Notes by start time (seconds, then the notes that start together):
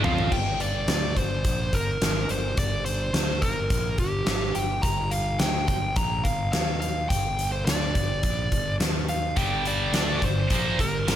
0.03 F2 F3 C4 F4 F5, floor tom
0.18 floor tom
0.32 G1 G5, kick, crash
0.60 D5, closed hi-hat
0.87 D2 D5, snare, closed hi-hat
1.16 G1 C5, kick, closed hi-hat
1.45 A#1, kick, closed hi-hat
1.73 G1 A#4, kick, closed hi-hat
2.01 G#1, snare, closed hi-hat
2.29 G1 C5, closed hi-hat
2.57 G1 D5, kick, closed hi-hat
2.85 C5, closed hi-hat
3.14 D2 C5, snare, closed hi-hat
3.42 G1 A#4, kick, closed hi-hat
3.70 A#1, kick, closed hi-hat
3.98 G1 G4, kick, closed hi-hat
4.26 G#1, snare, closed hi-hat
4.55 G1 G5, closed hi-hat
4.82 G1 A#5, kick, closed hi-hat
5.11 F5, closed hi-hat
5.39 D2 G5, snare, closed hi-hat
5.68 G1 G5, kick, closed hi-hat
5.96 A#1 A#5, kick, closed hi-hat
6.24 G1 F5, kick, closed hi-hat
6.52 D#2 F5, snare, closed hi-hat
6.81 F5, closed hi-hat
7.09 G1 G5, kick, closed hi-hat
7.39 closed hi-hat
7.52 C5
7.65 D2 D5, snare, closed hi-hat
7.95 G1, kick, closed hi-hat
8.23 A#1, kick, closed hi-hat
8.51 G1, kick, closed hi-hat
8.80 D#2, snare, closed hi-hat
9.09 F5, closed hi-hat
9.36 G1 G2 D3 G3 G5, kick, closed hi-hat
9.65 D5, closed hi-hat
9.93 D2 D3 A3 D4 D5, snare, closed hi-hat
10.22 G1 G2 D3 C5, kick, closed hi-hat
10.50 A#1 A#2 F3 A#3, kick, closed hi-hat
10.79 G1 G2 D3 A#4, kick, closed hi-hat
11.07 G#1 G#2 D#3 G#3, snare, closed hi-hat